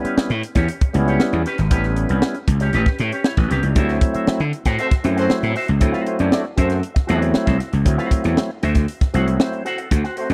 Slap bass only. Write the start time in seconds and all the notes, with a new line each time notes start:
0.04 muted slap bass stroke
0.17 muted slap bass stroke
0.30 A2
0.56 E2
0.95 C#2
1.33 E2
1.59 G#1
1.71 A1
2.10 C2
2.48 C#2
2.74 A1
3.00 A2
3.37 A1
3.51 C2
3.63 C#2
3.76 D2
4.15 muted slap bass stroke
4.28 muted slap bass stroke
4.40 D3
4.66 A2
5.04 F#2
5.30 muted slap bass stroke
5.43 A2
5.69 C#2
5.81 D2
6.20 F#2
6.58 F#2
7.10 E2
7.35 muted slap bass stroke
7.47 C2
7.73 C#2
7.86 D2
8.25 E2
8.63 D2
9.14 C2
9.91 D2
10.30 F#2